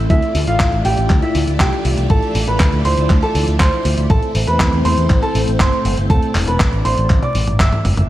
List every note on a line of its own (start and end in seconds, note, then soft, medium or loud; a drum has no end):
0.00 4.06 A3 medium
0.10 0.19 D2 loud
0.10 0.38 E4 medium
0.10 8.06 E4 medium
0.10 4.06 F4 medium
0.10 4.06 D5 medium
0.10 0.38 E5 loud
0.10 kick loud
0.10 closed hi-hat medium
0.22 closed hi-hat soft
0.35 0.44 D2 loud
0.35 open hi-hat loud
0.47 0.56 A1 medium
0.47 0.75 F4 medium
0.47 0.75 F5 loud
0.47 closed hi-hat medium
0.60 0.69 A1 loud
0.60 kick loud
0.60 clap loud
0.60 closed hi-hat medium
0.72 0.82 A1 medium
0.72 closed hi-hat soft
0.85 0.94 A1 medium
0.85 1.13 G4 medium
0.85 1.13 G5 loud
0.85 open hi-hat medium
0.97 1.06 A1 medium
0.97 closed hi-hat medium
1.10 1.19 D2 loud
1.10 kick loud
1.10 clap medium
1.10 closed hi-hat medium
1.22 1.50 E4 medium
1.22 1.50 E5 loud
1.22 closed hi-hat soft
1.35 1.44 D2 loud
1.35 open hi-hat loud
1.47 1.56 D2 medium
1.47 closed hi-hat medium
1.60 1.69 C2 loud
1.60 1.97 G4 medium
1.60 1.97 G5 loud
1.60 kick loud
1.60 clap loud
1.60 closed hi-hat medium
1.72 closed hi-hat soft
1.85 1.94 C2 medium
1.85 open hi-hat loud
1.97 2.06 C2 medium
1.97 closed hi-hat medium
2.10 2.19 A1 loud
2.10 2.38 A4 medium
2.10 2.38 A5 loud
2.10 kick loud
2.10 closed hi-hat medium
2.23 closed hi-hat soft
2.35 2.44 A1 loud
2.35 open hi-hat loud
2.47 2.57 A1 medium
2.47 2.75 B4 medium
2.47 2.75 B5 loud
2.47 closed hi-hat medium
2.60 2.69 D2 loud
2.60 kick loud
2.60 clap loud
2.60 closed hi-hat medium
2.72 2.81 D2 medium
2.72 closed hi-hat soft
2.85 2.94 D2 loud
2.85 3.13 C5 medium
2.85 3.13 C6 medium
2.85 open hi-hat medium
2.97 3.06 D2 medium
2.97 closed hi-hat medium
3.10 3.19 D2 loud
3.10 kick loud
3.10 clap soft
3.10 closed hi-hat medium
3.22 3.50 A4 medium
3.22 3.50 A5 loud
3.22 closed hi-hat soft
3.35 3.44 D2 loud
3.35 open hi-hat loud
3.48 3.57 D2 medium
3.48 closed hi-hat medium
3.60 3.69 D2 loud
3.60 3.97 C5 medium
3.60 3.97 C6 medium
3.60 kick loud
3.60 clap loud
3.60 closed hi-hat medium
3.72 closed hi-hat soft
3.85 3.94 D2 medium
3.85 open hi-hat loud
3.97 4.06 D2 medium
3.97 closed hi-hat medium
4.10 4.19 A1 loud
4.10 8.06 A3 medium
4.10 8.06 C4 medium
4.10 4.38 A4 medium
4.10 6.08 C5 medium
4.10 4.38 A5 loud
4.10 kick loud
4.10 closed hi-hat medium
4.22 closed hi-hat soft
4.35 4.44 A1 loud
4.35 open hi-hat loud
4.47 4.57 E2 medium
4.47 4.75 B4 medium
4.47 4.75 B5 loud
4.47 closed hi-hat medium
4.60 4.69 E2 loud
4.60 kick loud
4.60 clap loud
4.60 closed hi-hat medium
4.72 4.82 E2 medium
4.72 closed hi-hat soft
4.85 4.94 E2 loud
4.85 5.13 C5 medium
4.85 5.13 C6 loud
4.85 open hi-hat loud
4.97 5.07 E2 medium
4.97 closed hi-hat medium
5.10 5.19 A1 loud
5.10 kick loud
5.10 clap medium
5.10 closed hi-hat medium
5.22 5.50 A4 medium
5.22 5.50 A5 loud
5.22 closed hi-hat soft
5.35 5.44 A1 loud
5.35 open hi-hat loud
5.47 5.57 A1 medium
5.47 closed hi-hat medium
5.60 5.69 G1 loud
5.60 5.97 C5 medium
5.60 5.97 C6 loud
5.60 kick loud
5.60 clap loud
5.60 closed hi-hat medium
5.73 closed hi-hat soft
5.85 5.94 G1 loud
5.85 open hi-hat loud
5.97 6.07 G1 medium
5.97 closed hi-hat medium
6.10 6.19 E1 loud
6.10 6.38 A4 medium
6.10 8.08 D5 medium
6.10 6.38 A5 loud
6.10 kick loud
6.10 closed hi-hat medium
6.23 closed hi-hat soft
6.35 6.44 E1 loud
6.35 clap medium
6.35 open hi-hat loud
6.47 6.56 E1 medium
6.47 6.75 B4 medium
6.47 6.75 B5 loud
6.47 closed hi-hat medium
6.60 6.69 A1 loud
6.60 kick loud
6.60 clap loud
6.60 closed hi-hat medium
6.73 6.82 A1 medium
6.73 closed hi-hat soft
6.85 6.94 A1 medium
6.85 7.13 C5 medium
6.85 7.13 C6 medium
6.85 open hi-hat medium
6.97 7.06 A1 medium
6.97 closed hi-hat medium
7.10 7.19 A1 loud
7.10 kick loud
7.10 clap medium
7.10 closed hi-hat medium
7.10 high tom medium
7.22 7.50 D5 medium
7.22 7.50 D6 medium
7.22 closed hi-hat soft
7.22 high tom medium
7.35 7.44 A1 loud
7.35 open hi-hat loud
7.47 7.57 A1 medium
7.47 closed hi-hat medium
7.47 mid tom medium
7.60 7.69 G1 loud
7.60 7.97 E5 medium
7.60 7.97 E6 medium
7.60 kick loud
7.60 clap loud
7.60 closed hi-hat medium
7.60 mid tom medium
7.72 closed hi-hat soft
7.72 mid tom medium
7.85 7.94 G1 medium
7.85 mid tom loud
7.85 open hi-hat medium
7.97 8.06 G1 medium
7.97 closed hi-hat medium
7.97 mid tom medium